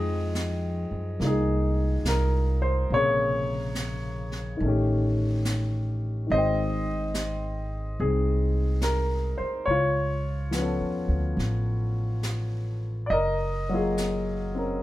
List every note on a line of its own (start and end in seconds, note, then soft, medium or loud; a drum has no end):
0.00 0.88 F2 medium
0.00 2.91 F3 soft
0.00 2.92 G#3 soft
0.00 1.23 D#4 soft
0.00 1.18 G#4 medium
0.00 0.89 D#5 medium
0.00 2.96 G5 soft
0.35 snare soft
0.35 hi-hat pedal soft
0.91 1.18 F#2 soft
1.20 2.02 C2 medium
1.20 2.91 A#3 soft
1.20 2.92 F4 soft
1.20 1.25 G#4 soft
1.20 brush sweep soft
1.20 snare soft
1.25 2.90 D#4 soft
1.25 2.05 G#4 medium
2.03 2.86 C2 medium
2.03 snare soft
2.03 hi-hat pedal soft
2.08 2.66 A#4 medium
2.62 2.92 C5 medium
2.90 4.56 A#1 medium
2.90 4.62 C3 soft
2.90 4.61 C#3 soft
2.90 4.62 A#3 soft
2.90 4.62 G#4 soft
2.90 4.30 C#5 medium
2.90 brush sweep soft
3.75 snare soft
3.75 hi-hat pedal soft
4.32 snare soft
4.57 6.26 A1 medium
4.57 6.25 D#3 soft
4.57 brush sweep soft
4.62 6.31 A3 soft
4.62 6.33 C#4 soft
4.68 6.34 G4 soft
5.45 snare soft
5.45 hi-hat pedal soft
6.27 7.95 G#1 medium
6.27 9.66 D#3 soft
6.27 brush sweep soft
6.31 9.68 G#3 soft
6.31 7.99 C4 soft
6.31 7.97 C5 medium
6.31 7.68 D#5 medium
6.38 9.72 G5 soft
7.14 snare soft
7.14 hi-hat pedal medium
7.98 9.36 C2 medium
7.98 9.68 C4 soft
7.98 8.02 G#4 medium
7.98 brush sweep soft
8.03 9.69 D#4 soft
8.03 9.70 G#4 soft
8.81 9.41 A#4 medium
8.81 snare soft
8.81 hi-hat pedal soft
9.38 9.65 C5 medium
9.38 muted upright bass stroke soft
9.66 10.77 C#2 medium
9.66 11.05 C#5 medium
9.66 brush sweep soft
9.71 11.36 F4 medium
10.51 13.10 F3 soft
10.51 13.12 B3 soft
10.51 snare soft
10.51 hi-hat pedal soft
10.58 13.14 C#4 soft
10.58 13.16 A4 soft
10.80 11.07 E2 soft
11.08 11.36 D2 medium
11.37 13.06 A1 medium
11.37 brush sweep soft
11.37 snare soft
12.23 snare soft
12.23 hi-hat pedal soft
13.06 14.79 F#1 medium
13.06 13.11 D5 medium
13.06 14.51 D#5 medium
13.06 brush sweep soft
13.13 14.57 A#4 medium
13.69 14.83 F#3 soft
13.69 14.83 A#3 soft
13.74 14.83 F4 soft
13.74 14.82 G#4 medium
13.98 snare soft
13.98 hi-hat pedal soft
14.55 14.83 C4 soft
14.55 14.83 C#4 soft
14.55 14.83 A#4 soft